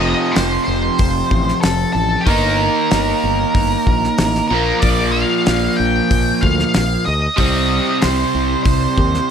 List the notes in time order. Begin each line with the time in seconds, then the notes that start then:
Already playing: F1 F2 C3 F3
0.00 D#5
0.32 C5
0.36 F1, snare, open hi-hat
0.64 F1 C5
0.99 F1, kick, open hi-hat
1.31 A1, kick
1.48 snare
1.61 F1 A4, snare, open hi-hat
1.93 A1 A4
2.21 G4
2.26 G1 D#3 A#3 D#4 A#4, kick, open hi-hat
2.91 G1, snare, open hi-hat
3.24 G1
3.55 G1, kick, open hi-hat
3.87 A#1, kick
4.04 snare
4.18 A1, snare, open hi-hat
4.35 snare
4.48 A#1 A#2 A#4
4.53 F3 A#3
4.79 A#1 D5, kick, open hi-hat
5.12 F5
5.46 A#1, snare, open hi-hat
5.77 A#1 G5
6.11 A#1, kick, open hi-hat
6.41 D2 F5, kick
6.59 snare
6.74 A#1, snare, open hi-hat
7.06 D2 D#5
7.37 C2 C3 G3 C4, kick, open hi-hat
8.02 C2 C5, snare, open hi-hat
8.35 C2
8.63 C2 C5, kick, open hi-hat
8.98 D#2, kick
9.14 snare